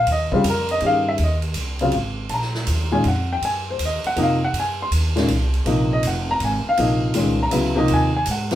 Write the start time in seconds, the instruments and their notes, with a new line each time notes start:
0.07 upright bass D#2, ride
0.12 grand piano D#5
0.32 grand piano C#3 G3 C4 F4 G4, kick
0.44 upright bass F2, grand piano A4, hi-hat pedal, ride
0.50 grand piano A#4
0.69 grand piano D#5, ride
0.81 upright bass G2, grand piano D#3 C#4 G4 G#4, ride
0.86 grand piano F5
1.09 grand piano E5
1.18 upright bass D#2, ride
1.24 grand piano D#5
1.42 ride
1.54 upright bass C2, hi-hat pedal, ride
1.79 grand piano C#3 F#3 C4 F4, ride
1.92 upright bass G#1, ride
2.29 upright bass A#1, grand piano A5, ride
2.34 grand piano A#5
2.42 snare
2.55 snare
2.67 upright bass D#2, hi-hat pedal, ride
2.92 grand piano A#2 D#3 G#3 C#4 G#5
3.04 upright bass F2, ride
3.08 grand piano F#5
3.33 grand piano G5
3.42 upright bass F#2, grand piano G#5, ride
3.70 grand piano C5
3.79 upright bass D#2, hi-hat pedal, ride
3.85 grand piano D#5
4.04 grand piano F#5, muted upright bass stroke, ride
4.16 upright bass F2, grand piano C3 F3 A#3 D#4, ride
4.23 grand piano F5
4.45 grand piano F#5
4.53 upright bass F#2, ride
4.60 grand piano G#5
4.82 grand piano C6
4.91 upright bass D#2, hi-hat pedal, ride
5.16 grand piano A#2 D#3 G#3 C#4, snare, ride
5.28 upright bass C2, ride
5.54 ride
5.66 upright bass A#1, grand piano C3 F3 A#3 D#4, ride
5.93 grand piano D#5
6.03 upright bass F1, hi-hat pedal, ride
6.07 grand piano F#5
6.31 grand piano A#5
6.40 upright bass G#1, ride
6.45 grand piano G#5
6.65 grand piano F5, muted upright bass stroke
6.77 upright bass A#1, grand piano C3 F3 A#3 D#4, ride
7.14 upright bass C2, grand piano A#2 D#3 G#3 C#4, hi-hat pedal, ride
7.43 grand piano A#5
7.51 upright bass C#2, grand piano C#3 F#3 B3 E4, hi-hat pedal, ride
7.75 grand piano C3 F3 A#3 D#4
7.88 upright bass D#2, ride
7.94 grand piano G#5
8.16 grand piano G#5
8.26 upright bass G#2, hi-hat pedal, ride
8.31 grand piano F#5
8.51 grand piano C3 F3, snare, ride